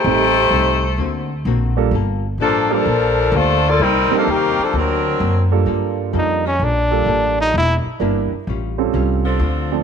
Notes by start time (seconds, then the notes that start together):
Already playing: A3 D#4 G4 C5
0.04 A1 A2 G3 A3 C4 D#4 A4
0.51 C2 A2 G3 C4 D#4
0.98 D2 D3 A#3 C4 F#4
1.45 A#1 D3 A#3 C4 F#4
1.77 G3 A#3 D4 F4 A4
1.91 G1 G3 A#3 F4 A4
2.38 A1 F3 G3 A#3 D4 F4 A4
2.70 F3 G3 A#3 D4 F4 A4 A#4
2.85 A#1 G3 A#3 F4 A4
3.32 D2 G3 A3 A#3 D4 F4 A4 C5
3.68 A#3 F4 A4 D5
3.79 C2 C3 G3 A#3 C4 D#4 A#4
4.11 G3 A#3 C4 D#4 A#4, muted upright bass stroke
4.15 F3 A#3 D4 A4
4.27 D#2 C3 D#3 G3 A#3 C4 D#4 G4
4.59 A#3 D4 A4, muted upright bass stroke
4.63 F3
4.73 D2 D3 A#3 C4 F#4
4.77 F#3 C4 D4 A#4
5.19 F#2 D3 A#3 C4 F#4
5.51 G3 A#3 D4 F4 A4
5.66 G2 G3 A#3 F4 A4
6.13 F2 G3 A#3 D4 F4 A4
6.18 D#4
6.45 G3 A#3 C#4 F4 A4
6.59 A#1 G3 A#3 F4 A4
6.64 D4
6.91 G3 A#3 D4 F4 A4
7.06 A1 G3 A#3 F4 A4
7.41 D#4
7.53 E1 E3 A#3 D4 G4
7.58 E4
7.85 muted upright bass stroke
7.99 G1 E3 G3 A#3 D4 E4 G4 A#4
8.32 muted upright bass stroke
8.47 A1 A2 G3 C#4 F4
8.78 G3 C4 C#4 F4 A4
8.93 C2 A2 G3 C#4 F4
9.25 F3 C4 D4 A4
9.39 D2 D3 A3 C4 F4
9.72 F3 A3 C4 D4 A4